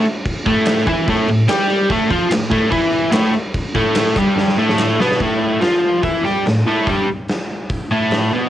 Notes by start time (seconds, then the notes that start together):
0.05 crash
0.25 kick, crash
0.46 A2 A3, kick, crash
0.66 snare, clap, crash
0.78 snare
0.87 E3 E4, kick, crash
1.08 A2 A3, kick, crash
1.28 A2, crash
1.48 G3 G4, snare, clap, crash
1.70 crash
1.89 A2 A3, kick, crash
2.10 F3 F4, kick, crash
2.31 A2, snare, clap, crash
2.43 snare
2.51 A2 A3, kick, crash
2.71 E3 E4, kick, crash
2.92 crash
3.12 A2 A3, snare, clap, crash
3.33 crash
3.54 kick, crash
3.75 A2 A3, kick, crash
3.95 snare, clap, crash
4.07 snare
4.15 G2 G3, kick, clap, crash
4.38 snare
4.48 snare
4.57 A2 A3
4.69 snare
4.79 snare, clap
5.00 B2 B3, snare
5.11 snare
5.20 A2 A3, kick, crash
5.61 F3 F4, snare, open hi-hat
6.03 E3 E4, kick, open hi-hat
6.24 G3 G4, snare
6.45 A2, snare, open hi-hat
6.66 A2 A3
6.86 G2 G3, kick, open hi-hat
7.28 snare, open hi-hat
7.70 kick, open hi-hat
7.91 A2 A3
8.11 snare, open hi-hat
8.32 B2 B3